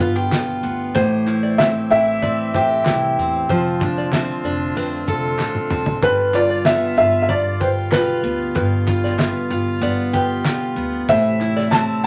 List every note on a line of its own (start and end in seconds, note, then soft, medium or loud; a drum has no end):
0.00 0.27 G1 medium
0.00 0.96 G2 medium
0.00 0.92 D3 medium
0.00 0.92 G3 medium
0.00 0.62 B3 medium
0.00 0.92 B3 medium
0.00 0.92 F4 medium
0.00 0.16 F4 medium
0.00 0.16 B4 medium
0.00 kick medium
0.00 shaker medium
0.16 1.02 G4 medium
0.31 0.59 B1 medium
0.31 1.02 F4 medium
0.31 snare loud
0.31 clap medium
0.31 shaker medium
0.63 0.90 D2 medium
0.63 1.02 B3 medium
0.63 shaker medium
0.95 1.71 A1 loud
0.95 3.49 A2 medium
0.95 3.46 E3 medium
0.95 3.46 A3 medium
0.95 5.98 C4 medium
0.95 3.46 G4 medium
0.95 1.26 C5 loud
0.95 1.61 C5 medium
0.95 kick loud
0.95 shaker medium
1.26 1.89 E4 medium
1.26 clap medium
1.26 shaker soft
1.43 1.58 D5 medium
1.43 shaker medium
1.58 2.23 C4 medium
1.58 1.65 E5 loud
1.58 1.89 E5 medium
1.58 snare loud
1.58 clap medium
1.58 shaker medium
1.90 2.17 A1 loud
1.90 2.86 E4 medium
1.90 3.14 E5 loud
1.90 2.06 G5 medium
1.90 shaker medium
2.22 2.49 A2 loud
2.22 3.19 C4 medium
2.22 2.53 D5 medium
2.22 kick loud
2.22 shaker medium
2.54 2.80 A1 medium
2.54 3.56 G4 medium
2.54 2.70 C5 medium
2.54 kick medium
2.54 shaker medium
2.85 3.12 C2 medium
2.85 3.56 E4 medium
2.85 snare loud
2.85 clap medium
2.85 shaker medium
3.18 3.44 E2 medium
3.18 3.85 C4 medium
3.18 shaker soft
3.33 shaker medium
3.48 4.25 F1 loud
3.48 11.04 D3 medium
3.48 6.06 F3 medium
3.48 5.99 A3 medium
3.48 6.00 F4 medium
3.48 3.80 C5 medium
3.48 kick loud
3.48 shaker medium
3.80 4.45 D4 medium
3.80 kick loud
3.80 clap medium
3.80 shaker soft
3.96 4.12 D5 medium
3.96 shaker medium
4.12 4.76 C4 medium
4.12 4.43 E5 medium
4.12 snare loud
4.12 clap medium
4.12 shaker medium
4.43 4.70 F1 loud
4.43 5.38 D4 medium
4.43 4.60 D5 medium
4.43 shaker medium
4.76 5.02 F2 loud
4.76 5.69 C4 medium
4.76 5.09 B4 medium
4.76 shaker medium
5.07 5.34 F1 loud
5.07 6.09 A4 medium
5.07 5.23 A4 medium
5.07 kick medium
5.07 shaker medium
5.39 5.65 A1 medium
5.39 6.33 D4 medium
5.39 snare medium
5.39 clap medium
5.55 high tom medium
5.70 5.97 C2 medium
5.70 6.08 C4 medium
5.70 mid tom medium
5.86 floor tom loud
6.01 6.78 G1 loud
6.01 8.54 G2 medium
6.01 11.03 B2 medium
6.01 12.07 G3 medium
6.01 11.04 F4 loud
6.01 6.33 B4 loud
6.01 6.35 B4 medium
6.01 kick loud
6.01 shaker medium
6.33 6.96 F4 medium
6.33 6.67 D5 medium
6.33 clap medium
6.33 shaker soft
6.50 6.65 D5 medium
6.65 7.29 B3 medium
6.65 6.96 E5 medium
6.65 snare loud
6.65 clap medium
6.65 shaker medium
6.96 7.23 G1 loud
6.96 7.91 F4 medium
6.96 7.21 E5 loud
6.96 7.13 F5 medium
6.96 shaker medium
7.22 7.29 E5 medium
7.29 7.55 G2 loud
7.29 7.59 D5 medium
7.29 7.59 D5 loud
7.29 kick medium
7.29 shaker medium
7.60 7.94 G1 medium
7.60 10.13 G4 medium
7.60 7.76 B4 medium
7.60 7.67 C5 medium
7.60 kick medium
7.60 shaker medium
7.92 8.18 B1 medium
7.92 8.85 F4 medium
7.92 8.36 B4 medium
7.92 snare loud
7.92 clap medium
7.92 shaker medium
8.23 8.50 D2 medium
8.23 9.17 B3 medium
8.23 shaker medium
8.55 9.31 G1 loud
8.55 11.08 G2 medium
8.55 8.86 B4 loud
8.55 kick loud
8.55 shaker medium
8.87 9.49 F4 medium
8.87 kick loud
8.87 clap medium
8.87 shaker medium
9.04 9.19 D5 medium
9.04 snare soft
9.18 9.80 B3 medium
9.18 9.51 E5 medium
9.18 snare loud
9.18 clap medium
9.18 shaker medium
9.50 9.76 G1 loud
9.50 10.43 F4 medium
9.50 9.66 F5 medium
9.50 shaker medium
9.67 shaker medium
9.81 10.08 G2 loud
9.81 10.75 B3 medium
9.81 10.12 D5 medium
9.81 shaker medium
10.13 10.40 G1 medium
10.13 12.07 G4 medium
10.13 10.29 B4 medium
10.13 kick medium
10.13 shaker medium
10.45 10.71 B1 medium
10.45 11.14 F4 medium
10.45 snare loud
10.45 clap medium
10.45 shaker medium
10.76 11.03 D2 medium
10.76 11.14 B3 medium
10.76 shaker medium
10.93 shaker medium
11.08 11.84 A1 loud
11.08 12.07 A2 medium
11.08 12.07 C3 medium
11.08 12.07 A3 medium
11.08 12.07 E4 medium
11.08 11.39 C5 loud
11.08 11.74 E5 loud
11.08 kick loud
11.08 shaker medium
11.40 12.03 E4 medium
11.40 clap medium
11.40 shaker soft
11.56 11.71 D5 medium
11.56 snare soft
11.56 shaker medium
11.71 12.07 C4 medium
11.71 12.02 E5 medium
11.71 12.03 A5 medium
11.71 snare loud
11.71 clap medium
11.71 shaker medium
12.03 12.07 A1 loud
12.03 shaker soft